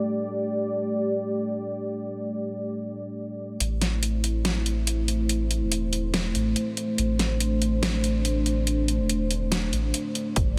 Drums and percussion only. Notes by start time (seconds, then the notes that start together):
3.60 closed hi-hat
3.82 snare, closed hi-hat
4.03 closed hi-hat
4.24 closed hi-hat
4.45 snare, closed hi-hat
4.66 closed hi-hat
4.87 closed hi-hat
5.08 closed hi-hat
5.29 closed hi-hat
5.51 closed hi-hat
5.72 closed hi-hat
5.93 closed hi-hat
6.14 snare, closed hi-hat
6.35 closed hi-hat
6.56 closed hi-hat
6.77 closed hi-hat
6.98 closed hi-hat
7.19 snare, closed hi-hat
7.40 closed hi-hat
7.62 closed hi-hat
7.83 snare, closed hi-hat
8.04 closed hi-hat
8.25 closed hi-hat
8.46 closed hi-hat
8.67 closed hi-hat
8.88 closed hi-hat
9.09 closed hi-hat
9.31 closed hi-hat
9.52 snare, closed hi-hat
9.73 closed hi-hat
9.94 closed hi-hat
10.15 closed hi-hat
10.36 kick, closed hi-hat